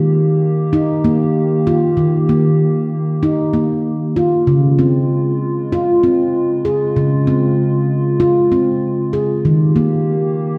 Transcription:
Already playing: D#3 A#3 G4
0.73 D#4
1.04 A#3
1.67 F4
1.97 D#3
2.29 A#3
3.23 D#4
3.53 A#3
4.16 F4
4.45 C#3 G#3 F4
4.79 C4
5.72 F4
6.03 C4
6.65 G#4
6.96 C#3
7.27 C4
8.20 F4
8.52 C4
9.13 G#4
9.43 D#3 A#3 G4
9.76 A#3

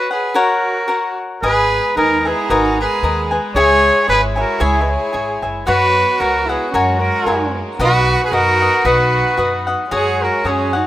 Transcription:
Already playing: F#4 B4 C#5
0.11 G#4 B4 C#5 F#5
0.34 F#4 A#4 C#5 F#5
0.88 F#4 A#4 C#5 F#5
1.41 G#1 G#3 B3 G#4 B4 D#5 G#5 A#5
1.97 D#2 D#4 A#4 B4 D#5 G#5
2.25 E4 G#4 B4 D#5 G#5
2.50 G#1 D#4 F#4 A#4 B4 D#5 G#5
2.81 G#4 B4
3.03 D#2 A#4 B4 D#5 G#5
3.31 B4 D#5 G#5
3.55 C#2 E4 G#4 C#5 E5 G#5
4.08 G#1 G#4 B4 C#5 E5 G#5
4.12 G#4
4.36 F#4 C#5 E5 G#5
4.40 A#4
4.60 C#2 E4 G#4 C#5 E5 G#5
4.81 B4 D#5
4.90 G#4 C#5
5.13 G#1 G#4 C#5 E5 G#5
5.42 F#1 C#5 E5 G#5
5.66 F#2 B3 F#4 B4 C#5 F#5
6.18 C#2 F#4 A#4 B4 C#5 F#5
6.46 E4 G#4 F#5
6.50 B4 C#5
6.71 F#2 G#3 C#4 F#4 A#4
6.75 C#5 F#5 G#5
7.00 F#4 A#4
7.26 F#2 A#4 C#5 F#5 G#5
7.78 B1 B3 D#4 F#4 B4 D#5 F#5
7.83 F#4 B4
8.24 G#4 B4
8.31 F#2 F#4 A#4 B4 D#5 F#5
8.61 B4 D#5 F#5
8.85 B1 F#4 B4 D#5 F#5
9.37 F#2 F#4 B4 D#5 F#5
9.67 B4 D#5 F#5
9.91 F#2 G#3 F#4 G#4 C#5 F#5
10.22 F#4 A#4
10.44 F#2 F#4 G#4 C#5 F#5
10.49 C#4
10.73 D#4 F#4 G#4 C#5 F#5

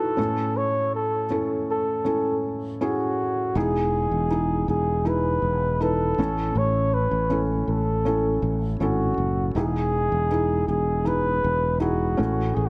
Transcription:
Already playing: D#4 E4 F#4 G#4 A4
0.17 A2 C#4 E4 A4
0.57 C#5
0.95 A4
1.30 C#4 E4 A4
1.71 A4
2.05 C#4 E4 A4
2.81 C#4 E4 F#4 G#4
3.55 E1 E3 D#4 E4 G#4
4.11 E1
4.31 D#4 E4 G#4
4.68 E1 G#4
5.05 D#4 E4 G#4 B4
5.42 E1
5.80 D#4 E4 A4 B4
6.18 A1 A2 C#4 E4 A4
6.55 A1 C#5
6.94 B4
7.11 A1
7.30 C#4 E4 A4
7.67 A1 A4
8.05 C#4 E4 A4
8.42 A1
8.80 G#1 C#4 E4 F#4 A4
9.18 F#1
9.55 E1 E3 D#4 E4 G#4
10.12 E1
10.31 D#4 E4 G#4
10.67 E1 G#4
11.05 D#4 E4 G#4 B4
11.44 E1
11.80 D#4 E4 F#4 G#4
12.17 A1 A2 A3 C#4 E4
12.55 A1 G#4

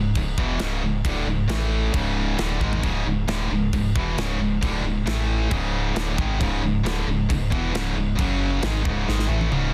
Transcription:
Already playing: C#1 C#2 G#2
0.15 C#1 C#2 G#2, kick, crash
0.38 E1 E2 B2 E3, kick
0.59 C#1 C#2 G#2 C#3, snare, crash
0.82 C#1 C#2 G#2
1.05 D1 D2 A2 D3, kick, crash
1.25 C#1 C#2 G#2
1.48 A1 A2 E3 A3, snare, crash
1.93 C#1 C#2 G#2 C#3, kick, crash
2.37 D1 D2 A2 D3, snare, crash
2.61 G#1 G#2 D#3 G#3, kick
2.73 floor tom
2.83 C#1 C#2 G#2 C#3, kick, crash
3.05 C#1 C#2 G#2
3.27 D1 D2 A2 D3, snare, crash
3.50 C#1 C#2 G#2
3.73 C#1 C#2 G#2, kick, crash
3.96 E1 E2 B2 E3, kick
4.17 C#1 C#2 G#2 C#3, snare, crash
4.39 C#1 C#2 G#2
4.61 D1 D2 A2 D3, kick, crash
4.83 C#1 C#2 G#2
5.06 A1 A2 E3 A3, snare, crash
5.50 C#1 C#2 G#2 C#3, kick, crash
5.95 D1 D2 A2 D3, snare, crash
6.16 G#1 G#2 D#3 G#3, kick
6.38 C#1 C#2 G#2 C#3, kick, crash
6.62 C#1 C#2 G#2
6.83 D1 D2 A2 D3, snare, crash
7.07 C#1 C#2 G#2
7.29 C#1 C#2 G#2, kick, crash
7.50 E1 E2 B2 E3, kick
7.72 C#1 C#2 G#2 C#3, snare, crash
7.96 C#1 C#2 G#2
8.15 F#1 F#2 C#3 F#3, kick, crash
8.62 G#1 G#2 D#3 G#3, snare, crash
8.83 C#1 C#2 G#2 C#3, kick
9.06 G#1 G#2 D#3 G#3, snare
9.19 snare
9.27 A1 A2 E3 A3
9.41 high tom
9.49 C#1 C#2 G#2 C#3, mid tom

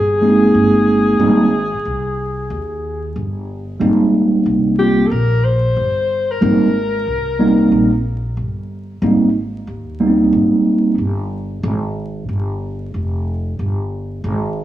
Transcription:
Already playing: G1 G#4
0.21 G#3 A#3 C4 D#4
0.55 G1
1.19 G#1 G3 A#3 C4 D#4
1.74 muted upright bass stroke
1.86 C2
2.50 D#2
3.16 G1
3.80 G#1 G3 A#3 C4 D#4
4.45 C2
4.78 G3 A#3 C4 F4 G4
5.07 A4 A#4
5.11 A#1
5.44 C5
5.76 G1
6.31 A#4
6.41 G#1 G3 A#3 C4 D#4
7.07 C2
7.39 G3 A#3 B3 D#4
7.46 C4
7.72 A#1
8.37 G1
9.02 G#1 G3 A#3 C4 D#4
9.67 D#2
10.00 G3 A#3 B3 D#4
10.07 C4
10.33 G#1
10.98 G1
11.63 G#1
12.29 G1
12.94 F1
13.59 G1
14.24 G#1

